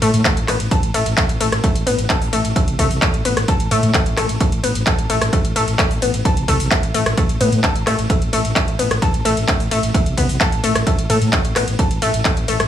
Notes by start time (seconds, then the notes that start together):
0.02 A2 A3, open hi-hat, ride
0.14 A2, closed hi-hat
0.25 A3, kick, clap, closed hi-hat, ride
0.37 A1, closed hi-hat
0.48 A1 B3, cross-stick, clap, open hi-hat, ride
0.60 A1, closed hi-hat
0.71 A4, kick, closed hi-hat, ride
0.83 A1, closed hi-hat
0.94 A1 A3, open hi-hat, ride
1.06 A1, closed hi-hat
1.17 A3, kick, clap, closed hi-hat, ride
1.29 A1, closed hi-hat
1.40 A1 A3, open hi-hat, ride
1.52 A1, cross-stick, closed hi-hat
1.64 A3, kick, closed hi-hat, ride
1.75 A1, closed hi-hat
1.86 A1 B3, open hi-hat, ride
1.98 A1, closed hi-hat
2.10 A4, kick, clap, closed hi-hat, ride
2.21 A1, open hi-hat
2.33 A1 A3, open hi-hat, ride
2.44 A1, closed hi-hat
2.56 A3, kick, closed hi-hat, ride
2.68 C2, closed hi-hat
2.79 C2 A3, kick, open hi-hat, ride
2.91 C2, open hi-hat
3.02 A3, kick, clap, closed hi-hat, ride
3.14 A1, closed hi-hat
3.25 A1 B3, open hi-hat, ride
3.37 A1, cross-stick, closed hi-hat
3.48 A4, kick, closed hi-hat, ride
3.60 A1, closed hi-hat
3.71 A2 A3, open hi-hat, ride
3.83 A2, closed hi-hat
3.94 A3, kick, clap, closed hi-hat, ride
4.06 A1, closed hi-hat
4.17 A1 A3, cross-stick, clap, open hi-hat, ride
4.29 A1, closed hi-hat
4.40 A3, kick, closed hi-hat, ride
4.52 A1, closed hi-hat
4.63 A1 B3, open hi-hat, ride
4.75 A1, closed hi-hat
4.87 A4, kick, clap, closed hi-hat, ride
4.98 A1, closed hi-hat
5.10 A1 A3, open hi-hat, ride
5.21 A1, cross-stick, closed hi-hat
5.33 A3, kick, closed hi-hat, ride
5.44 A1, closed hi-hat
5.56 A1 A3, open hi-hat, ride
5.67 A1, closed hi-hat
5.79 A3, kick, clap, closed hi-hat, ride
5.91 A1, open hi-hat
6.02 A1 B3, open hi-hat, ride
6.14 A1, closed hi-hat
6.25 A4, kick, closed hi-hat, ride
6.37 C2, closed hi-hat
6.48 C2 A3, kick, open hi-hat, ride
6.60 C2, open hi-hat
6.71 A3, kick, clap, closed hi-hat, ride
6.83 A1, closed hi-hat
6.94 A1 A3, open hi-hat, ride
7.06 A1, cross-stick, closed hi-hat
7.17 A3, kick, closed hi-hat, ride
7.29 A1, closed hi-hat
7.41 A2 B3, open hi-hat, ride
7.52 A2, closed hi-hat
7.64 A4, kick, clap, closed hi-hat, ride
7.75 A1, closed hi-hat
7.87 A1 A3, cross-stick, clap, open hi-hat, ride
7.98 A1, closed hi-hat
8.10 A3, kick, closed hi-hat, ride
8.22 A1, closed hi-hat
8.33 A1 A3, open hi-hat, ride
8.45 A1, closed hi-hat
8.56 A3, kick, clap, closed hi-hat, ride
8.68 A1, closed hi-hat
8.79 A1 B3, open hi-hat, ride
8.91 A1, cross-stick, closed hi-hat
9.02 A4, kick, closed hi-hat, ride
9.14 A1, closed hi-hat
9.25 A1 A3, open hi-hat, ride
9.37 A1, closed hi-hat
9.48 A3, kick, clap, closed hi-hat, ride
9.60 A1, open hi-hat
9.71 A1 A3, open hi-hat, ride
9.83 A1, closed hi-hat
9.94 A3, kick, closed hi-hat, ride
10.06 C2, closed hi-hat
10.17 C2 B3, kick, open hi-hat, ride
10.29 C2, open hi-hat
10.40 A4, kick, clap, closed hi-hat, ride
10.52 A1, closed hi-hat
10.64 A1 A3, open hi-hat, ride
10.75 A1, cross-stick, closed hi-hat
10.87 A3, kick, closed hi-hat, ride
10.98 A1, closed hi-hat
11.10 A2 A3, open hi-hat, ride
11.21 A2, closed hi-hat
11.33 A3, kick, clap, closed hi-hat, ride
11.45 A1, closed hi-hat
11.56 A1 B3, cross-stick, clap, open hi-hat, ride
11.68 A1, closed hi-hat
11.79 A4, kick, closed hi-hat, ride
11.91 A1, closed hi-hat
12.02 A1 A3, open hi-hat, ride
12.14 A1, closed hi-hat
12.25 A3, kick, clap, closed hi-hat, ride
12.37 A1, closed hi-hat
12.48 A1 A3, open hi-hat, ride
12.60 A1, cross-stick, closed hi-hat